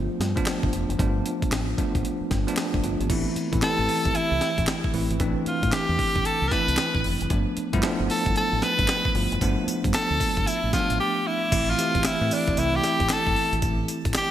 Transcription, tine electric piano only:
Already playing: F3 A3 B3 D4 F4
0.36 F3 A3 B3 D4
0.99 F3 A3 B3 D4
1.78 F3 A3 B3 D4
2.47 F3 A3 B3 D4
2.73 F3 D4
2.84 A3 F4
3.00 B3 G4
3.09 E3 A3 C4 E4
3.52 E3 A3 C4 E4
3.62 E3 A3 C4 G4
4.93 E3 A3 C4 E4
5.20 E3 A3 C4 D4
6.51 E3 A3 C4 E4
7.30 F3 A3 B3 D4
7.73 F3 A3 B3 E4
7.83 F3 A3 B3 D4
9.14 F3 A3 B3 F4
9.42 F3 A3 B3 D4
10.73 F3 A3 B3 D4
11.52 E3 A3 C4 E4
11.78 E3 A3 C4 G4
12.21 E3 A3 C4 E4
12.58 E3 A3 C4 E4

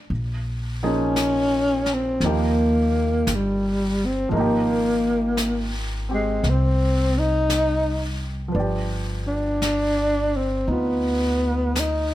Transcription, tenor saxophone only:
0.87 C#4
1.94 C4
2.28 A#3
3.35 G3
4.06 C4
4.31 G#3
4.39 A#3
6.14 G#3
6.50 C4
7.19 D#4
9.27 D4
10.37 C4
10.70 B3
11.79 D#4

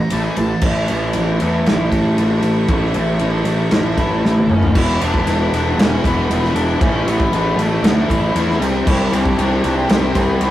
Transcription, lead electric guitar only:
0.00 A#5
0.13 A5
0.24 G#5
0.38 A5
3.97 E4 E5
4.50 C#4 C#5
4.76 E4 E5
5.01 D4 D5
5.80 C#4 C#5
6.06 B3 B4
6.54 D4 D5
6.80 C#4 C#5
7.08 B3 B4
7.33 B3 B4
7.60 A3 A4
8.08 E4 E5
8.64 C4 C5
8.88 E4 E5
9.14 D4 D5
9.90 C4 C5
10.17 B3 B4

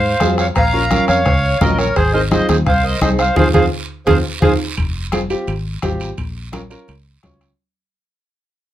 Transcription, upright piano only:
0.20 C4 F4 G#4
0.73 C#4 F4 A#4
0.91 C#4 F4 A#4
1.61 C#4 F4 A#4
2.13 C4 D#4 G#4
2.31 C4 D#4 F4
3.01 C4 D#4 G#4
3.37 C4 F4 G#4
3.54 C4 F4 G#4
4.07 C4 F4 G#4
4.42 C4 F4 G#4
5.12 C4 F4 G#4
5.30 C4 F4 G4
5.82 C4 F4 G4
6.52 C#4 F4 A#4
6.70 C#4 F4 A#4
7.23 C#4 F4 C#5

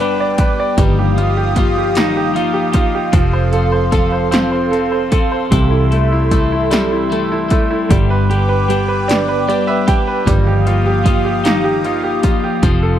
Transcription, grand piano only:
Already playing: G3 D4 D5
0.00 B4
0.20 D5
0.40 B4
0.60 D5
0.79 G3
0.99 G4
1.18 F4
1.37 G4
1.58 F4
1.78 G4
1.97 D#4
2.17 G4
2.35 F4
2.54 G4
2.74 F4
2.95 G4
3.14 F3
3.33 C5
3.53 A4
3.72 C5
3.92 A4
4.12 C5
4.31 C4
4.52 C5
4.71 A4
4.92 C5
5.12 A4
5.32 C5
5.51 C3
5.71 E4
5.92 A3
6.12 E4
6.32 A3
6.52 E4
6.71 G3
6.92 E4
7.12 A3
7.32 E4
7.52 A3
7.71 E4
7.91 G3
8.10 B4
8.30 G4
8.49 B4
8.69 G4
8.88 B4
9.08 D4
9.28 B4
9.48 G4 D5
9.67 B4 E5
9.87 G4 G5
10.07 B4
10.27 G3
10.47 G4
10.67 F4
10.86 G4
11.06 F4
11.25 G4
11.45 D#4
11.64 G4
11.85 F4
12.04 G4
12.23 F4
12.44 G4
12.63 F3
12.83 A4

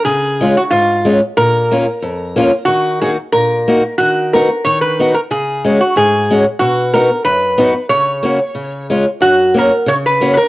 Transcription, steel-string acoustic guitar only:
0.06 C#3
0.41 G#3 C#4 F4
0.71 G#2
1.05 G#3 C#4 F4
1.37 A#2
1.71 A#3 C#4 F4
2.02 F2
2.36 A#3 C#4 F4
2.68 D#3
3.01 A#3 D#4 F#4
3.33 A#2
3.68 A#3 D#4 F#4
4.00 D#3
4.34 B3 D#4 F#4
4.66 D#3
5.00 B3 D#4 F#4
5.31 C#3
5.65 G#3 C#4 F#4
5.96 G#2
6.30 G#3 C#4 F#4
6.61 B2
6.94 B3 D#4 F#4
7.25 F#2
7.58 B3 D#4 F#4
7.90 C#3
8.23 A#3 C#4 F#4
8.55 C#3
8.90 G#3 C#4 F4
9.21 F#2
9.54 A#3 C#4 F#4
9.86 C#3
10.21 A#3 C#4 F#4

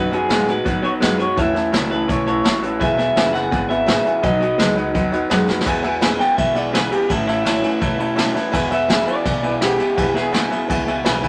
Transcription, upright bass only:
Already playing: F#2
0.29 A2
0.66 G#2
0.83 muted upright bass stroke
1.02 F#2
1.38 E2
1.73 C#2
2.09 B1
2.45 A1
2.81 E1
3.16 F#1
3.53 G#1
3.87 A1
4.24 B1
4.59 C#2
4.95 D#2
5.31 F#2
5.66 E2
6.38 B1
7.10 A1
7.82 E1
8.54 E1
9.25 B1
9.98 E1
10.70 C#2
11.05 B1

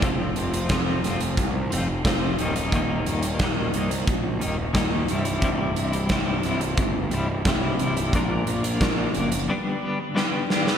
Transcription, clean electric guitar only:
0.02 F2 C3 F3 A3 C4 F4
0.54 F3 A3 C4 F4
0.69 F2 C3 F3 A3 C4 F4
1.04 F3 A3 C4 F4
1.22 muted clean electric guitar stroke
1.70 F3 A3 C4 F4
1.88 muted clean electric guitar stroke
2.05 F2 C3 F3 A3 C4 F4
2.39 D#2 A#2 D#3 G3 A#3 D#4
2.56 D#3 G3 A#3 D#4
2.74 D#2 A#2 D#3 G3 A#3 D#4
3.24 D#3 G3 A#3 D#4
3.42 D#2 A#2 D#3 G3 A#3 D#4
3.74 D#3 G3 A#3 D#4
3.92 muted clean electric guitar stroke
4.40 D#3 G3 A#3 D#4
4.58 muted clean electric guitar stroke
4.73 D#2 A#2 D#3 G3 A#3 D#4
5.09 C2 G2 C3 G3 E4
5.25 C3 G3 E4
5.42 C2 G2 C3 G3 E4
5.92 C3 G3 E4
6.09 C2 G2 C3 G3 E4
6.44 G2 C3 G3 E4
6.62 muted clean electric guitar stroke
7.11 G2 C3 G3 E4
7.29 muted clean electric guitar stroke
7.46 C2 G2 C3 G3 E4
7.79 G2 C3 G3 E4
7.97 C3 G3 E4
8.14 A#2 F3 A#3 D4 F4 A#4
8.63 A#3 D4 F4 A#4
8.80 A#2 F3 A#3 D4 F4 A#4
9.15 A#3 D4 F4 A#4
9.32 muted clean electric guitar stroke
9.48 G2 D3 G3 B3 D4 G4
9.82 G3 B3 D4 G4
10.00 muted clean electric guitar stroke
10.14 G2 D3 G3 B3 D4 G4
10.49 G3 B3 D4 G4
10.66 G3 B3 D4 G4

